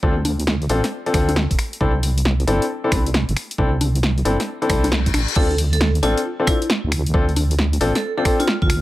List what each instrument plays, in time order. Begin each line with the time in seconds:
0.03 wobble bass D2, grand piano C4 D4 F4 A4, kick
0.25 open hi-hat, high conga
0.40 closed hi-hat
0.47 snare
0.62 closed hi-hat
0.69 wobble bass A1, grand piano C4 D4 F4 A4, open hi-hat
0.84 snare, closed hi-hat
1.06 grand piano C4 D4 F4 A4, closed hi-hat
1.14 wobble bass D2, grand piano C4 D4 F4 A4, finger snap, kick, open hi-hat
1.29 closed hi-hat, high conga
1.36 snare
1.51 wobble bass D1, kick, closed hi-hat
1.59 finger snap, open hi-hat
1.73 closed hi-hat
1.81 wobble bass C2, grand piano C4 D4 E4 A4, kick
2.03 open hi-hat
2.18 closed hi-hat
2.25 snare
2.40 closed hi-hat
2.47 wobble bass G1, grand piano C4 D4 E4 A4, open hi-hat
2.62 closed hi-hat
2.84 grand piano C4 D4 E4 A4
2.92 wobble bass C2, grand piano C4 D4, finger snap, kick, open hi-hat
3.06 closed hi-hat
3.14 snare
3.29 wobble bass G1, closed hi-hat
3.37 finger snap, open hi-hat
3.51 closed hi-hat
3.58 wobble bass C2, grand piano C4 D4 E4 A4, kick
3.81 open hi-hat, high conga
3.95 closed hi-hat
4.03 snare
4.18 closed hi-hat
4.25 wobble bass G1, grand piano C4 D4 E4 A4, open hi-hat
4.40 snare, closed hi-hat
4.47 reverse cymbal
4.62 grand piano C4 D4 E4 A4, closed hi-hat
4.69 wobble bass C2, grand piano C4 D4 E4 A4, finger snap, kick, open hi-hat
4.84 closed hi-hat, high conga
4.92 snare
5.06 kick, closed hi-hat
5.14 wobble bass A1, finger snap, open hi-hat, high conga
5.28 closed hi-hat
5.36 wobble bass D2, grand piano C4 D4 F4 A4, vibraphone A4, kick, crash
5.51 closed hi-hat
5.58 open hi-hat
5.73 vibraphone A4, closed hi-hat
5.81 snare
5.95 closed hi-hat
6.03 wobble bass A1, grand piano C4 D4 F4 A4, vibraphone F4, open hi-hat
6.18 closed hi-hat
6.40 grand piano C4 D4 F4 A4
6.47 grand piano C4 D4 F4 A4, vibraphone E4, finger snap, kick, open hi-hat
6.62 closed hi-hat
6.70 snare
6.84 wobble bass D2
6.92 finger snap, open hi-hat
7.06 closed hi-hat
7.14 wobble bass D2, grand piano C4 D4 F4 A4, kick
7.29 closed hi-hat
7.36 open hi-hat, high conga
7.51 closed hi-hat
7.59 snare
7.73 closed hi-hat
7.81 wobble bass A1, grand piano C4 D4 F4 A4, open hi-hat
7.95 vibraphone A4, snare, closed hi-hat
8.17 grand piano C4 D4 F4 A4, vibraphone A4
8.25 grand piano C4 D4 F4 A4, finger snap, kick, open hi-hat
8.40 vibraphone F4, closed hi-hat, high conga
8.48 snare
8.62 wobble bass D2, vibraphone F4, kick
8.70 finger snap, open hi-hat